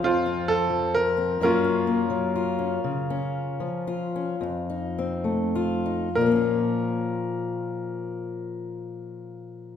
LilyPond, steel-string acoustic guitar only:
\new Staff \with { instrumentName = "Steel-string acoustic guitar" } { \time 6/8 \key bes \minor \tempo 4. = 37 << { f'16 c'4 c'16 <ges bes des' f'>16 des'16 bes8 f'16 des'16 | r16 des'8. f'16 des'16 r16 ees'16 c'8 f'16 ees'16 | <f bes des' f'>2. | } \\ { f,8. f8. ges,8. ges8. | des8. f8. f,8. a8. | bes,2. | } >> }